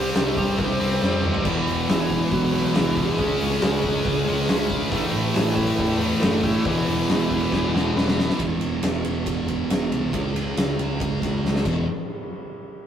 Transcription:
Already playing: C2 C3 G3 C4 G4
0.15 C2 G3 G4, snare, open hi-hat
0.37 C2 G3 G4, kick, open hi-hat
0.58 C2 C4 C5, kick, open hi-hat
0.80 C2 C3 G3 C4, open hi-hat
1.01 F2 C3 G3 C4, snare
1.24 mid tom
1.34 floor tom
1.44 E1 E2 B2 E3, kick, crash
1.67 E1, open hi-hat
1.89 E1 E3 E4, snare, open hi-hat
1.99 E3 E4
2.10 kick, open hi-hat
2.31 B1 F#3 F#4, kick, open hi-hat
2.53 E2 B2 E3, open hi-hat
2.75 C2 E2 B2 E3 E4, snare, open hi-hat
2.96 G#3 G#4, kick, open hi-hat
3.18 C#2 C#3 G#3 C#4, kick, open hi-hat
3.40 C#2, open hi-hat
3.61 C#2, snare, open hi-hat
3.83 C#2, kick, open hi-hat
4.05 C#2, kick, open hi-hat
4.27 C#2 C#3 G#3 C#4, open hi-hat
4.48 C#2 C#3 G#3 C#4, snare, open hi-hat
4.70 kick, open hi-hat
4.92 A1 A2 E3 A3, kick, open hi-hat
5.14 A1, open hi-hat
5.34 A1 E3 E4, snare, open hi-hat
5.55 E3 E4, kick, open hi-hat
5.78 E2, kick, open hi-hat
6.00 A2 E3 A3, open hi-hat
6.21 F#1 A2 E3 A3 A4, snare, open hi-hat
6.44 E3 E4, kick, open hi-hat
6.65 E1 E2 B2 E3, kick, open hi-hat
6.87 E1, open hi-hat
7.09 E1, snare, open hi-hat
7.31 E1, kick, open hi-hat
7.52 E1, kick, snare
7.73 E1 E2 B2 E3, snare
7.95 E1 E2 B2 E3, snare
8.08 snare
8.19 snare
8.30 snare
8.39 E1 E2 B2 E3, kick, ride
8.61 E1, ride
8.83 E1, snare, ride
9.05 E1, ride
9.26 E1, kick, ride
9.48 kick, ride
9.70 E1, snare, ride
9.91 C2, ride
10.12 C#2 C#3 G#3 C#4, kick, ride
10.35 C#2, ride
10.57 C#2, snare, ride
10.79 C#2, ride
11.00 C#2, kick, ride
11.22 C#2, kick, snare, ride
11.44 C#2, snare
11.56 snare
11.65 E1 E2 B2 E3, kick, crash

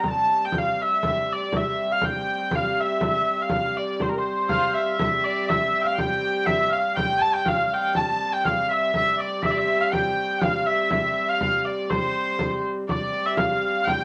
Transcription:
Already playing: C3 G3
0.04 frame drum
0.08 A5
0.45 G5
0.52 frame drum
0.58 F5
0.82 E5
1.01 C3 G3, frame drum
1.06 E5
1.33 D5
1.52 E5, frame drum
1.92 F5
2.01 G5, frame drum
2.51 F5, frame drum
2.80 E5
3.01 E5, frame drum
3.42 F5
3.50 frame drum
3.77 D5
4.00 C5, frame drum
4.09 A#4
4.18 C5
4.49 F5, frame drum
4.74 E5
4.98 C3 G3 E5, frame drum
5.24 D5
5.47 E5, frame drum
5.81 F5 G5
5.86 F5
5.94 G5
5.98 G5, frame drum
6.46 E5, frame drum
6.69 F5
6.95 G5, frame drum
7.21 A5
7.33 G5
7.45 F5, frame drum
7.74 G5
7.95 A5, frame drum
8.21 frame drum
8.33 G5
8.44 F5, frame drum
8.68 E5
8.92 C3 G3 E5, frame drum
8.97 E5
9.18 D5
9.43 E5, frame drum
9.51 D5
9.58 E5
9.81 F5
9.92 G5, frame drum
10.41 F5, frame drum
10.66 E5
10.91 E5, frame drum
11.28 F5
11.41 frame drum
11.65 D5
11.89 C5, frame drum
12.39 frame drum
12.86 C3 G3 D5, frame drum
13.14 frame drum
13.26 E5
13.36 F5, frame drum
13.85 G5, frame drum

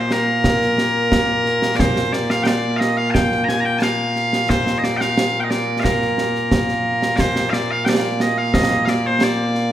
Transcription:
Already playing: A#2 A#3 C5
0.11 A#4, snare
0.44 concert bass drum, snare
0.61 snare
0.78 snare
1.12 concert bass drum, snare
1.46 snare
1.62 snare
1.76 C5 D5, concert bass drum, snare
1.96 snare
2.13 D5, snare
2.30 F5, snare
2.43 D5 G5, snare
2.77 D#5 F5
2.81 snare
2.97 F5
3.10 G5 A5
3.15 concert bass drum, snare
3.32 snare
3.44 A#5
3.49 G#5, snare
3.61 A#5
3.65 G5
3.79 F5 A5, snare
4.16 snare
4.33 snare
4.49 C5, concert bass drum, snare
4.67 snare
4.78 D#5
4.84 D5, snare
4.97 F5 G5
5.01 snare
5.17 snare
5.40 G5
5.44 D#5
5.50 D5, snare
5.80 A#4 F5
5.84 concert bass drum, snare
6.02 snare
6.18 snare
6.35 snare
6.51 concert bass drum, snare
6.68 snare
7.02 snare
7.16 C5 D5, concert bass drum, snare
7.36 snare
7.50 D5 F5, snare
7.71 F5
7.85 D5 G5, snare
8.20 D#5, snare
8.38 F5
8.54 D#5, concert bass drum, snare
8.71 snare
8.85 D5 F5, snare
9.06 C5
9.21 D5, snare
9.55 snare

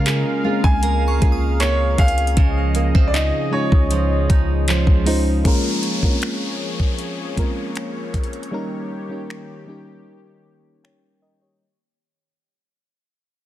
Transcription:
Already playing: C#3 G#3 A#3 C#4 F4 A#4 F5
0.06 G#4, clap, closed hi-hat
0.44 G#3 A#3 C4 F4 G#4
0.52 C#4
0.64 C#2 G#5, kick
0.83 A#3 A#5, closed hi-hat
1.08 C#6
1.20 C#2 G#3 A#3 C#4 F4 G#4 A#4, kick, closed hi-hat
1.32 D#6
1.60 A#3 C#5, clap, closed hi-hat
1.98 C#2 G#4 F5 G#5, kick, closed hi-hat
2.08 closed hi-hat
2.18 closed hi-hat
2.27 closed hi-hat
2.37 C#2 C#3 F3 G#4 D#5, kick, closed hi-hat
2.75 A#3, closed hi-hat
2.95 C#2 C4, kick
3.08 D5
3.14 D#4 D#5, clap, closed hi-hat
3.51 G#3 C#4 D#4 F4 C#5
3.72 C#2, kick
3.91 F3, closed hi-hat
4.30 C#2 D#4, kick, closed hi-hat
4.68 F3, clap, closed hi-hat
4.87 C#2, kick
5.05 G#3 C#4 D#4 F4 C5, open hi-hat
5.44 F3 G#3 A#3 C#4 F4 G#4 A#4 C#5, kick, closed hi-hat, downlifter
5.83 closed hi-hat
6.02 G#3 A#3 C4 F4 A#4, kick
6.10 C#4
6.22 finger snap, closed hi-hat
6.80 kick
6.99 closed hi-hat
7.36 G#3 A#3 C4 F4 A#4, kick, closed hi-hat
7.44 C#4
7.76 finger snap, closed hi-hat
8.14 kick, closed hi-hat
8.24 closed hi-hat
8.33 closed hi-hat
8.43 closed hi-hat
8.51 D#3 G3 A#3 C#4 D#4 G4 A#4
9.09 G3 A#3 C#4 D#4 G4
9.30 finger snap
9.66 G3 A#3 C#4 D#4 G4
10.84 C#5 G5, finger snap
11.22 A#4 D#5
11.42 G4 C#5

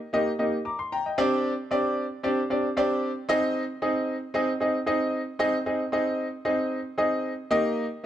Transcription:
0.13 A#3 D#4 G4 D#5
0.39 A#3 D#4 G4 D#5
0.65 A#5 D6
0.79 C6
0.92 G5 A#5
1.06 D#5 G5
1.18 C4 D4 G4 D5
1.71 C4 D4 G4 D5
2.23 C4 D4 G4 D5
2.50 C4 D4 G4 D5
2.77 C4 D4 G4 D5
3.29 C4 D#4 G#4 D#5
3.82 C4 D#4 G#4 D#5
4.34 C4 D#4 G#4 D#5
4.60 C4 D#4 G#4 D#5
4.86 C4 D#4 G#4 D#5
5.39 C4 D#4 G#4 D#5
5.66 C4 D#4 G#4 D#5
5.92 C4 D#4 G#4 D#5
6.45 C4 D#4 G#4 D#5
6.98 C4 D#4 G#4 D#5
7.51 A#3 D#4 G4 D#5

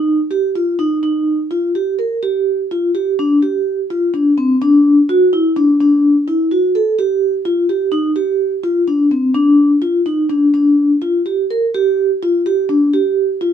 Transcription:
Already playing: D#4
0.31 G4
0.55 F4
0.79 D#4
1.03 D#4
1.51 F4
1.75 G4
1.99 A#4
2.23 G4
2.71 F4
2.95 G4
3.19 D4
3.42 G4
3.90 F4
4.14 D4
4.38 C4
4.62 D4
5.09 F#4
5.33 E4
5.56 D4
5.81 D4
6.28 E4
6.51 F#4
6.75 A4
6.99 G4
7.45 F4
7.69 G4
7.92 D#4
8.16 G4
8.64 F4
8.88 D4
9.11 C4
9.34 D4
9.82 F4
10.06 D#4
10.30 D4
10.54 D4
11.02 F4
11.26 G4
11.51 A#4
11.74 G4
12.22 F4
12.46 G4
12.69 D4
12.93 G4
13.41 F4

